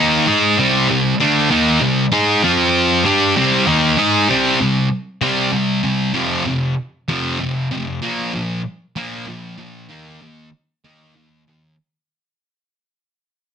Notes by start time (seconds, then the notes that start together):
Already playing: D#3 A#3 D#4
0.27 G#3 D#4 G#4
0.58 C3 G3 C4
0.89 C3 G3
1.20 D3 A3 D4
1.50 D#3 A#3 D#4
1.81 C3 G3
2.12 G#3 D#4 G#4
2.42 F3 C4 F4
3.04 G3 D4 G4
3.36 C3 G3 C4
3.67 D#3 A#3 D#4
3.98 G#3 D#4 G#4
4.29 C3 G3 C4
4.61 C3 G3
5.21 C3 G3 C4
5.52 C3 G3
5.83 C3 G3
6.14 F2 C3 F3
6.45 F2 C3
7.08 F2 C3 F3
7.40 F2 C3
7.71 F2 C3
8.02 A#2 F3 A#3
8.34 A#2 F3
8.96 A#2 F3 A#3
9.26 A#2 F3
9.57 A#2 F3
9.89 D#3 A#3 D#4
10.22 D#3 A#3
10.85 D#3 A#3 D#4
11.15 D#3 A#3
11.48 D#3 A#3